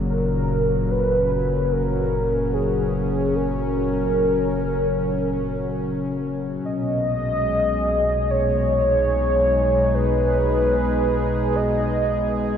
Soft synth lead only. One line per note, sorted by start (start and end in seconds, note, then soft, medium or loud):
0.10 0.93 A#4 loud
0.91 1.74 B4 loud
1.72 2.55 A#4 loud
2.54 3.37 G#4 medium
3.35 5.80 A#4 loud
6.65 8.32 D#5 loud
8.31 9.96 C#5 loud
9.95 11.57 B4 loud
11.56 12.57 D#5 medium